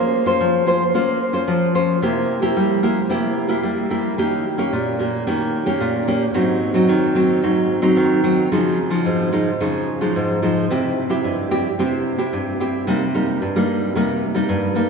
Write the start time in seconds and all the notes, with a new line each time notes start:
Already playing: A#3 C#4 F4 C5
0.26 C#4 F4 C5
0.41 F3
0.67 C#4 F4 C5
0.94 A#3 C#4 F4 C5
1.33 C#4 F4 C5
1.48 F3
1.75 C#4 F4 C5
2.02 C3 A#3 E4 G4
2.42 A#3 E4 G4
2.57 G3
2.83 A#3 E4 G4
3.10 C3 A#3 E4 G4
3.48 A#3 E4 G4
3.63 G3
3.90 A#3 E4 G4
4.18 D#3 A#3 C#4 G4
4.58 A#3 C#4 G4
4.73 A#2
4.99 A#3 C#4 G4
5.27 D#3 A#3 C#4 G4
5.66 A#3 C#4 G4
5.81 A#2
6.08 A#3 C#4 G4
6.34 G#2 F#3 C4 D#4
6.74 F#3 C4 D#4
6.89 D#3
7.15 F#3 C4 D#4
7.43 G#2 F#3 C4 D#4
7.82 F#3 C4 D#4
7.96 D#3
8.23 F#3 C4 D#4
8.52 C#3 F3 G#3 D#4
8.90 F3 G#3 D#4
9.06 G#2
9.32 F3 G#3 D#4
9.60 C#3 F3 G#3 D#4
10.01 F3 G#3 D#4
10.16 G#2
10.42 F3 G#3 D#4
10.71 C3 C4 E4 G4
11.09 C4 E4 G4
11.24 G2
11.51 C4 E4 G4
11.79 C3 C4 E4 G4
12.18 C4 E4 G4
12.33 G2
12.60 C4 E4 G4
12.87 C3 G3 A#3 D#4
13.14 G3 A#3 D#4
13.42 G2
13.56 G3 A#3 D#4
13.95 C3 G3 A#3 D#4
14.34 G3 A#3 D#4
14.49 G2
14.75 G3 A#3 D#4